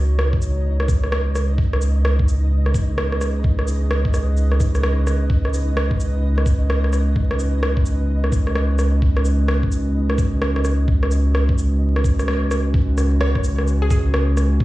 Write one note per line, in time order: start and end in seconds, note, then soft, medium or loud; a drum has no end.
0.00 5.28 C#2 medium
0.00 14.64 G#3 medium
0.00 14.64 C#4 medium
0.00 12.75 D#4 medium
0.00 2.26 F#4 medium
0.00 14.64 B4 medium
0.00 2.27 C#5 medium
0.00 12.75 D#5 medium
0.19 cross-stick loud
0.33 kick loud
0.42 shaker medium
0.80 cross-stick medium
0.88 kick loud
0.88 shaker medium
1.04 cross-stick medium
1.12 cross-stick loud
1.35 cross-stick medium
1.35 shaker medium
1.58 kick loud
1.73 cross-stick medium
1.82 shaker medium
2.05 cross-stick loud
2.13 7.03 G#4 medium
2.13 12.74 D#5 medium
2.19 kick loud
2.28 shaker medium
2.66 cross-stick medium
2.74 kick loud
2.74 shaker medium
2.98 cross-stick loud
3.12 cross-stick medium
3.21 cross-stick medium
3.21 shaker medium
3.44 kick loud
3.59 cross-stick medium
3.67 shaker medium
3.91 cross-stick loud
4.05 kick loud
4.14 cross-stick medium
4.14 shaker medium
4.37 shaker soft
4.52 cross-stick medium
4.60 kick loud
4.60 shaker medium
4.75 cross-stick soft
4.75 shaker soft
4.83 cross-stick loud
5.07 cross-stick medium
5.07 shaker soft
5.30 12.72 C#2 medium
5.30 kick loud
5.45 cross-stick medium
5.54 shaker medium
5.77 cross-stick loud
5.91 kick loud
6.00 14.64 F#4 medium
6.00 shaker medium
6.38 cross-stick medium
6.46 kick loud
6.46 shaker medium
6.70 cross-stick loud
6.84 cross-stick medium
6.93 cross-stick medium
6.93 shaker soft
7.16 kick loud
7.31 cross-stick medium
7.39 shaker medium
7.63 cross-stick loud
7.77 kick loud
7.86 shaker medium
8.24 cross-stick medium
8.32 kick loud
8.32 shaker medium
8.47 cross-stick medium
8.55 cross-stick medium
8.79 cross-stick medium
8.79 shaker soft
9.02 kick loud
9.17 cross-stick medium
9.25 shaker medium
9.48 cross-stick loud
9.63 kick loud
9.72 shaker medium
10.10 cross-stick medium
10.18 kick loud
10.18 shaker medium
10.42 cross-stick loud
10.56 cross-stick medium
10.65 cross-stick medium
10.65 shaker medium
10.88 kick loud
11.03 cross-stick medium
11.11 shaker medium
11.35 cross-stick loud
11.49 kick loud
11.58 shaker medium
11.96 cross-stick medium
12.04 kick loud
12.04 shaker medium
12.19 cross-stick medium
12.19 shaker soft
12.28 cross-stick medium
12.51 cross-stick medium
12.51 shaker medium
12.74 14.64 C#2 medium
12.74 kick loud
12.98 cross-stick medium
12.98 shaker medium
13.21 13.45 C#5 medium
13.21 cross-stick loud
13.35 kick loud
13.35 cross-stick medium
13.44 shaker medium
13.58 cross-stick medium
13.67 shaker soft
13.82 13.88 G#4 medium
13.90 14.00 G#4 medium
13.90 kick loud
13.90 shaker medium
14.14 cross-stick loud
14.37 cross-stick medium
14.37 shaker medium
14.60 kick loud